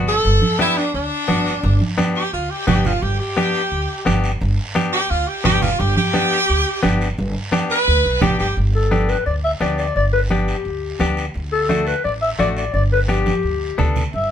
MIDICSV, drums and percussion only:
0, 0, Header, 1, 2, 480
1, 0, Start_track
1, 0, Key_signature, 1, "major"
1, 0, Tempo, 347021
1, 346, Time_signature, 4, 2, 24, 8
1, 19798, End_track
2, 0, Start_track
2, 0, Title_t, "Drums"
2, 106, Note_on_c, 9, 73, 69
2, 245, Note_off_c, 9, 73, 0
2, 347, Note_on_c, 9, 74, 73
2, 485, Note_off_c, 9, 74, 0
2, 582, Note_on_c, 9, 63, 78
2, 720, Note_off_c, 9, 63, 0
2, 823, Note_on_c, 9, 63, 79
2, 825, Note_on_c, 9, 73, 73
2, 961, Note_off_c, 9, 63, 0
2, 963, Note_off_c, 9, 73, 0
2, 1064, Note_on_c, 9, 73, 64
2, 1202, Note_off_c, 9, 73, 0
2, 1301, Note_on_c, 9, 74, 71
2, 1439, Note_off_c, 9, 74, 0
2, 1779, Note_on_c, 9, 63, 91
2, 1782, Note_on_c, 9, 73, 74
2, 1917, Note_off_c, 9, 63, 0
2, 1920, Note_off_c, 9, 73, 0
2, 2025, Note_on_c, 9, 73, 72
2, 2163, Note_off_c, 9, 73, 0
2, 2259, Note_on_c, 9, 74, 70
2, 2398, Note_off_c, 9, 74, 0
2, 2500, Note_on_c, 9, 63, 69
2, 2638, Note_off_c, 9, 63, 0
2, 2739, Note_on_c, 9, 73, 71
2, 2744, Note_on_c, 9, 63, 84
2, 2878, Note_off_c, 9, 73, 0
2, 2883, Note_off_c, 9, 63, 0
2, 2978, Note_on_c, 9, 73, 62
2, 3116, Note_off_c, 9, 73, 0
2, 3215, Note_on_c, 9, 74, 76
2, 3353, Note_off_c, 9, 74, 0
2, 3700, Note_on_c, 9, 73, 74
2, 3703, Note_on_c, 9, 63, 94
2, 3703, Note_on_c, 9, 64, 90
2, 3839, Note_off_c, 9, 73, 0
2, 3841, Note_off_c, 9, 63, 0
2, 3841, Note_off_c, 9, 64, 0
2, 3939, Note_on_c, 9, 64, 74
2, 3941, Note_on_c, 9, 73, 69
2, 4078, Note_off_c, 9, 64, 0
2, 4080, Note_off_c, 9, 73, 0
2, 4181, Note_on_c, 9, 74, 73
2, 4319, Note_off_c, 9, 74, 0
2, 4663, Note_on_c, 9, 73, 69
2, 4665, Note_on_c, 9, 63, 76
2, 4802, Note_off_c, 9, 73, 0
2, 4803, Note_off_c, 9, 63, 0
2, 4901, Note_on_c, 9, 73, 68
2, 5039, Note_off_c, 9, 73, 0
2, 5142, Note_on_c, 9, 74, 71
2, 5281, Note_off_c, 9, 74, 0
2, 5618, Note_on_c, 9, 63, 92
2, 5620, Note_on_c, 9, 73, 71
2, 5757, Note_off_c, 9, 63, 0
2, 5758, Note_off_c, 9, 73, 0
2, 5861, Note_on_c, 9, 73, 75
2, 5999, Note_off_c, 9, 73, 0
2, 6096, Note_on_c, 9, 74, 76
2, 6235, Note_off_c, 9, 74, 0
2, 6576, Note_on_c, 9, 63, 78
2, 6579, Note_on_c, 9, 73, 74
2, 6714, Note_off_c, 9, 63, 0
2, 6718, Note_off_c, 9, 73, 0
2, 6821, Note_on_c, 9, 73, 66
2, 6960, Note_off_c, 9, 73, 0
2, 7060, Note_on_c, 9, 74, 76
2, 7198, Note_off_c, 9, 74, 0
2, 7538, Note_on_c, 9, 63, 91
2, 7538, Note_on_c, 9, 64, 95
2, 7538, Note_on_c, 9, 73, 76
2, 7676, Note_off_c, 9, 63, 0
2, 7676, Note_off_c, 9, 64, 0
2, 7677, Note_off_c, 9, 73, 0
2, 7779, Note_on_c, 9, 64, 78
2, 7782, Note_on_c, 9, 73, 75
2, 7917, Note_off_c, 9, 64, 0
2, 7921, Note_off_c, 9, 73, 0
2, 8019, Note_on_c, 9, 74, 73
2, 8158, Note_off_c, 9, 74, 0
2, 8252, Note_on_c, 9, 63, 77
2, 8391, Note_off_c, 9, 63, 0
2, 8495, Note_on_c, 9, 63, 80
2, 8495, Note_on_c, 9, 73, 78
2, 8633, Note_off_c, 9, 73, 0
2, 8634, Note_off_c, 9, 63, 0
2, 8737, Note_on_c, 9, 73, 75
2, 8876, Note_off_c, 9, 73, 0
2, 8973, Note_on_c, 9, 74, 75
2, 9111, Note_off_c, 9, 74, 0
2, 9448, Note_on_c, 9, 63, 92
2, 9450, Note_on_c, 9, 73, 73
2, 9587, Note_off_c, 9, 63, 0
2, 9588, Note_off_c, 9, 73, 0
2, 9696, Note_on_c, 9, 73, 73
2, 9834, Note_off_c, 9, 73, 0
2, 9929, Note_on_c, 9, 74, 71
2, 10067, Note_off_c, 9, 74, 0
2, 10403, Note_on_c, 9, 63, 83
2, 10413, Note_on_c, 9, 73, 73
2, 10541, Note_off_c, 9, 63, 0
2, 10552, Note_off_c, 9, 73, 0
2, 10649, Note_on_c, 9, 73, 73
2, 10788, Note_off_c, 9, 73, 0
2, 10888, Note_on_c, 9, 74, 71
2, 11026, Note_off_c, 9, 74, 0
2, 11365, Note_on_c, 9, 63, 93
2, 11365, Note_on_c, 9, 64, 93
2, 11368, Note_on_c, 9, 73, 73
2, 11503, Note_off_c, 9, 63, 0
2, 11503, Note_off_c, 9, 64, 0
2, 11507, Note_off_c, 9, 73, 0
2, 11606, Note_on_c, 9, 73, 69
2, 11745, Note_off_c, 9, 73, 0
2, 11848, Note_on_c, 9, 74, 67
2, 11853, Note_on_c, 9, 63, 33
2, 11986, Note_off_c, 9, 74, 0
2, 11991, Note_off_c, 9, 63, 0
2, 12327, Note_on_c, 9, 73, 62
2, 12330, Note_on_c, 9, 63, 72
2, 12466, Note_off_c, 9, 73, 0
2, 12469, Note_off_c, 9, 63, 0
2, 12571, Note_on_c, 9, 73, 58
2, 12709, Note_off_c, 9, 73, 0
2, 12810, Note_on_c, 9, 63, 34
2, 12811, Note_on_c, 9, 74, 61
2, 12948, Note_off_c, 9, 63, 0
2, 12950, Note_off_c, 9, 74, 0
2, 13285, Note_on_c, 9, 63, 81
2, 13290, Note_on_c, 9, 73, 61
2, 13424, Note_off_c, 9, 63, 0
2, 13428, Note_off_c, 9, 73, 0
2, 13532, Note_on_c, 9, 73, 64
2, 13670, Note_off_c, 9, 73, 0
2, 13768, Note_on_c, 9, 63, 31
2, 13771, Note_on_c, 9, 74, 67
2, 13907, Note_off_c, 9, 63, 0
2, 13910, Note_off_c, 9, 74, 0
2, 14248, Note_on_c, 9, 63, 72
2, 14254, Note_on_c, 9, 73, 61
2, 14387, Note_off_c, 9, 63, 0
2, 14392, Note_off_c, 9, 73, 0
2, 14497, Note_on_c, 9, 73, 60
2, 14636, Note_off_c, 9, 73, 0
2, 14730, Note_on_c, 9, 63, 32
2, 14733, Note_on_c, 9, 74, 63
2, 14868, Note_off_c, 9, 63, 0
2, 14871, Note_off_c, 9, 74, 0
2, 15208, Note_on_c, 9, 63, 86
2, 15212, Note_on_c, 9, 73, 68
2, 15347, Note_off_c, 9, 63, 0
2, 15351, Note_off_c, 9, 73, 0
2, 15452, Note_on_c, 9, 73, 69
2, 15591, Note_off_c, 9, 73, 0
2, 15690, Note_on_c, 9, 74, 66
2, 15693, Note_on_c, 9, 63, 35
2, 15829, Note_off_c, 9, 74, 0
2, 15832, Note_off_c, 9, 63, 0
2, 16174, Note_on_c, 9, 73, 69
2, 16175, Note_on_c, 9, 63, 74
2, 16312, Note_off_c, 9, 73, 0
2, 16313, Note_off_c, 9, 63, 0
2, 16414, Note_on_c, 9, 73, 62
2, 16553, Note_off_c, 9, 73, 0
2, 16657, Note_on_c, 9, 74, 66
2, 16658, Note_on_c, 9, 63, 33
2, 16795, Note_off_c, 9, 74, 0
2, 16797, Note_off_c, 9, 63, 0
2, 17140, Note_on_c, 9, 63, 78
2, 17141, Note_on_c, 9, 73, 66
2, 17278, Note_off_c, 9, 63, 0
2, 17279, Note_off_c, 9, 73, 0
2, 17381, Note_on_c, 9, 73, 66
2, 17519, Note_off_c, 9, 73, 0
2, 17616, Note_on_c, 9, 74, 67
2, 17622, Note_on_c, 9, 63, 33
2, 17754, Note_off_c, 9, 74, 0
2, 17760, Note_off_c, 9, 63, 0
2, 18097, Note_on_c, 9, 73, 64
2, 18103, Note_on_c, 9, 63, 66
2, 18236, Note_off_c, 9, 73, 0
2, 18241, Note_off_c, 9, 63, 0
2, 18343, Note_on_c, 9, 73, 62
2, 18346, Note_on_c, 9, 63, 80
2, 18481, Note_off_c, 9, 73, 0
2, 18484, Note_off_c, 9, 63, 0
2, 18578, Note_on_c, 9, 74, 61
2, 18717, Note_off_c, 9, 74, 0
2, 19068, Note_on_c, 9, 73, 60
2, 19070, Note_on_c, 9, 64, 88
2, 19207, Note_off_c, 9, 73, 0
2, 19208, Note_off_c, 9, 64, 0
2, 19306, Note_on_c, 9, 73, 64
2, 19313, Note_on_c, 9, 64, 71
2, 19444, Note_off_c, 9, 73, 0
2, 19451, Note_off_c, 9, 64, 0
2, 19548, Note_on_c, 9, 74, 66
2, 19553, Note_on_c, 9, 63, 35
2, 19687, Note_off_c, 9, 74, 0
2, 19691, Note_off_c, 9, 63, 0
2, 19798, End_track
0, 0, End_of_file